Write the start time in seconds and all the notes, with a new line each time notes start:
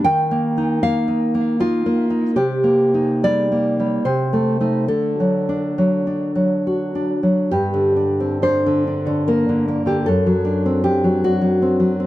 0.04 D#3 G5
0.31 A#3
0.57 D#4
0.83 A#3 F5
1.08 D#4
1.34 A#3
1.60 D#4 F4
1.86 A#3
2.10 D#4
2.36 C3 G4
2.64 A#3
2.94 D#4
3.23 G3 D5
3.52 A#3
3.80 G3
4.05 C3 C5
4.33 A3
4.61 A3 D#4
4.88 D3 A4
5.20 F#3
5.49 D4
5.78 F#3
6.07 D4
6.35 F#3
6.67 F#4
6.95 D4
7.23 F#3
7.51 G2 G4
7.74 D3
7.96 D4
8.20 C4
8.42 D4 C5
8.66 D3
8.87 D4
9.07 D3
9.28 A#3 A#4
9.49 D3
9.68 A#3
9.86 D3 G4
10.06 F#2 A4
10.26 F#3
10.45 D4
10.66 C4
10.84 D4 G4
11.04 F#3
11.24 D4 F#4
11.42 F#3
11.62 C4
11.80 F#3
12.00 C4